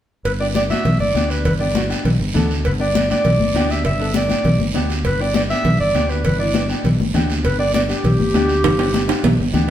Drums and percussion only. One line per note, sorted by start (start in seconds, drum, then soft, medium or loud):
0.25 cowbell loud
0.25 high conga soft
0.25 long guiro medium
0.55 high conga medium
0.55 short guiro medium
0.70 high conga medium
0.70 short guiro medium
0.85 cowbell medium
0.85 high conga soft
0.85 low conga medium
0.85 long guiro medium
1.00 high conga medium
1.15 high conga medium
1.15 short guiro medium
1.30 short guiro medium
1.45 cowbell loud
1.45 high conga soft
1.45 low conga medium
1.45 long guiro medium
1.75 high conga medium
1.75 short guiro medium
1.90 short guiro medium
2.05 cowbell medium
2.05 high conga soft
2.05 low conga medium
2.05 long guiro medium
2.35 high conga medium
2.35 low conga medium
2.35 short guiro medium
2.51 short guiro medium
2.65 cowbell medium
2.65 high conga soft
2.65 long guiro medium
2.95 high conga medium
2.95 short guiro medium
3.10 high conga medium
3.10 short guiro medium
3.25 cowbell medium
3.25 high conga soft
3.25 low conga medium
3.25 long guiro medium
3.40 high conga medium
3.55 high conga medium
3.55 low timbale medium
3.55 short guiro medium
3.70 short guiro medium
3.85 cowbell medium
3.85 long guiro medium
4.14 high conga medium
4.14 short guiro medium
4.29 high conga medium
4.29 short guiro medium
4.44 cowbell medium
4.44 high conga soft
4.44 low conga medium
4.44 long guiro medium
4.59 high conga medium
4.74 high conga medium
4.74 low timbale medium
4.74 short guiro medium
4.90 short guiro medium
5.04 cowbell loud
5.04 high conga soft
5.04 long guiro medium
5.34 high conga medium
5.34 short guiro medium
5.50 short guiro medium
5.65 cowbell medium
5.65 high conga soft
5.65 low conga medium
5.65 long guiro medium
5.94 high conga medium
5.94 low timbale medium
5.94 short guiro medium
6.09 short guiro medium
6.24 cowbell medium
6.24 high conga soft
6.24 low conga medium
6.24 long guiro medium
6.54 high conga medium
6.54 short guiro medium
6.69 short guiro medium
6.84 cowbell medium
6.84 high conga soft
6.84 low conga medium
6.84 long guiro medium
7.00 high conga medium
7.14 high conga medium
7.14 low conga medium
7.14 low timbale medium
7.14 short guiro medium
7.30 short guiro medium
7.44 cowbell medium
7.44 high conga soft
7.44 long guiro medium
7.74 high conga medium
7.74 short guiro medium
7.89 short guiro medium
8.04 cowbell medium
8.04 high conga soft
8.04 low conga medium
8.04 long guiro medium
8.20 high conga medium
8.34 high conga medium
8.34 low timbale medium
8.34 short guiro medium
8.49 short guiro medium
8.64 cowbell loud
8.64 high conga soft
8.64 low conga medium
8.64 high timbale medium
8.64 long guiro medium
8.79 high timbale medium
8.94 high conga medium
8.94 short guiro medium
9.09 high timbale medium
9.09 short guiro medium
9.24 cowbell medium
9.24 high conga soft
9.24 low conga medium
9.24 low timbale medium
9.24 long guiro medium
9.54 high conga medium
9.54 low conga medium
9.54 short guiro medium